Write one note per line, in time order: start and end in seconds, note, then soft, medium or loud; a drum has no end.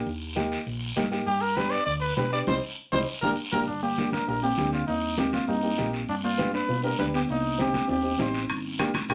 0.06 0.54 D#2 medium
0.06 long guiro medium
0.35 0.57 A#3 medium
0.35 0.57 D#4 medium
0.35 0.57 G4 medium
0.35 high conga medium
0.35 short guiro medium
0.52 short guiro medium
0.66 0.91 A#1 medium
0.66 long guiro medium
0.96 1.21 G2 medium
0.96 1.02 A#3 medium
0.96 1.02 D#4 medium
0.96 1.02 G4 medium
0.96 high conga medium
0.96 short guiro medium
1.11 1.26 A#3 medium
1.11 1.27 D#4 medium
1.11 1.27 G4 medium
1.11 short guiro medium
1.26 1.75 G2 medium
1.26 1.43 G4 medium
1.26 long guiro medium
1.41 1.58 A#4 loud
1.56 1.78 B3 medium
1.56 1.78 D4 medium
1.56 1.78 G4 medium
1.56 1.72 B4 medium
1.56 high conga medium
1.56 short guiro medium
1.71 1.85 D5 medium
1.71 short guiro medium
1.86 2.11 D2 loud
1.86 1.93 D5 medium
1.86 long guiro medium
2.01 2.15 B4 medium
2.17 2.41 B2 medium
2.17 2.22 B3 medium
2.17 2.23 D4 medium
2.17 2.23 G4 medium
2.17 2.31 B4 medium
2.17 high conga medium
2.17 short guiro medium
2.32 2.47 B3 medium
2.32 2.47 D4 medium
2.32 2.47 G4 medium
2.32 2.39 D5 medium
2.32 short guiro medium
2.47 2.58 C2 medium
2.47 2.57 G3 medium
2.47 2.57 C4 loud
2.47 2.57 D#4 medium
2.47 2.55 C5 medium
2.47 high conga medium
2.47 long guiro medium
2.92 3.03 C2 medium
2.92 3.02 G3 medium
2.92 3.02 C4 loud
2.92 3.02 D#4 medium
2.92 2.99 C5 medium
2.92 high conga medium
2.92 long guiro medium
3.22 3.33 G1 medium
3.22 3.33 A#3 medium
3.22 3.33 D4 medium
3.22 3.33 G4 medium
3.22 3.29 A#4 medium
3.22 high conga medium
3.22 long guiro medium
3.52 3.64 G1 medium
3.52 3.63 A#3 medium
3.52 3.63 D4 medium
3.52 3.63 G4 medium
3.52 3.59 A#4 medium
3.52 high conga medium
3.52 long guiro medium
3.67 4.16 G1 medium
3.67 3.83 G3 medium
3.67 3.81 D4 medium
3.67 long guiro medium
3.83 4.14 A#3 medium
3.83 4.11 G4 medium
3.98 4.08 A#3 medium
3.98 4.08 D4 medium
3.98 4.09 G4 medium
3.98 high conga medium
3.98 short guiro medium
4.13 4.26 D4 medium
4.13 4.27 A#4 medium
4.13 high conga medium
4.13 short guiro medium
4.28 4.52 A#1 medium
4.28 4.33 A#3 medium
4.28 4.43 D4 medium
4.28 4.33 D4 medium
4.28 4.33 G4 medium
4.28 4.42 A#4 medium
4.28 long guiro medium
4.43 4.48 A#3 medium
4.43 4.71 C4 medium
4.43 4.48 D4 medium
4.43 4.71 G4 medium
4.43 4.48 G4 medium
4.58 4.82 D2 medium
4.58 4.79 A#3 medium
4.58 4.79 D4 medium
4.58 4.79 G4 medium
4.58 high conga medium
4.58 short guiro medium
4.73 4.87 A#3 medium
4.73 4.87 F4 medium
4.73 short guiro medium
4.87 5.36 D#2 medium
4.87 5.19 A#3 medium
4.87 5.16 D#4 medium
4.87 long guiro medium
5.17 5.28 A#3 medium
5.17 5.32 C4 medium
5.17 5.29 D#4 medium
5.17 5.32 G4 medium
5.17 5.29 G4 medium
5.17 high conga medium
5.17 short guiro medium
5.33 5.48 A#3 medium
5.33 5.47 F4 medium
5.33 high conga medium
5.33 short guiro medium
5.47 5.72 G2 medium
5.47 5.53 A#3 medium
5.47 5.91 A#3 medium
5.47 5.53 D#4 medium
5.47 5.90 D#4 medium
5.47 5.53 G4 medium
5.47 long guiro medium
5.63 5.68 A#3 medium
5.63 5.68 D#4 medium
5.63 5.69 G4 medium
5.77 6.03 A#1 medium
5.77 5.99 A#3 medium
5.77 5.99 D#4 medium
5.77 5.99 G4 medium
5.77 high conga medium
5.77 short guiro medium
5.93 short guiro medium
6.08 6.57 G2 medium
6.08 6.16 G3 medium
6.08 6.16 D4 medium
6.08 long guiro medium
6.24 6.55 A#3 medium
6.24 6.52 F4 medium
6.38 6.49 B3 medium
6.38 6.49 D4 medium
6.38 6.49 G4 medium
6.38 high conga medium
6.38 short guiro medium
6.54 6.82 D4 medium
6.54 6.82 B4 medium
6.54 short guiro medium
6.68 6.93 B2 medium
6.68 6.74 B3 medium
6.68 6.74 D4 medium
6.68 6.74 F4 medium
6.68 long guiro medium
6.83 6.89 B3 medium
6.83 6.89 D4 medium
6.83 6.99 D4 medium
6.83 6.89 G4 medium
6.83 6.98 A#4 medium
6.98 7.23 D2 medium
6.98 7.20 B3 medium
6.98 7.20 D4 medium
6.98 7.06 D4 loud
6.98 7.20 G4 medium
6.98 7.06 B4 medium
6.98 high conga medium
6.98 short guiro medium
7.14 7.21 B3 medium
7.14 7.22 G4 medium
7.14 short guiro medium
7.29 7.77 C2 medium
7.29 7.58 A#3 medium
7.29 7.58 D#4 medium
7.29 long guiro medium
7.58 7.69 C4 medium
7.58 7.88 C4 medium
7.58 7.69 D#4 medium
7.58 7.70 G4 medium
7.58 7.88 G4 medium
7.58 high conga medium
7.58 short guiro medium
7.74 high conga medium
7.74 short guiro medium
7.88 8.13 D#2 medium
7.88 7.94 C4 medium
7.88 8.18 C4 medium
7.88 7.94 D#4 medium
7.88 7.94 F4 medium
7.88 8.18 G4 medium
7.88 long guiro medium
8.03 8.09 C4 medium
8.03 8.09 D#4 medium
8.03 8.09 G4 medium
8.18 8.44 A1 medium
8.18 8.40 C4 medium
8.18 8.40 D#4 medium
8.18 8.41 D#4 medium
8.18 8.40 G4 medium
8.18 8.42 C5 medium
8.18 high conga medium
8.18 short guiro medium
8.34 short guiro medium
8.49 8.98 G1 medium
8.49 high timbale medium
8.49 long guiro medium
8.79 8.90 A#3 medium
8.79 8.90 D4 medium
8.79 8.90 G4 medium
8.79 high conga medium
8.79 high timbale medium
8.79 short guiro medium
8.94 high conga medium
8.94 high timbale medium
8.94 short guiro medium
9.09 9.14 A#1 medium
9.09 9.14 A#3 medium
9.09 9.14 D4 medium
9.09 9.14 G4 medium
9.09 high timbale medium
9.09 long guiro medium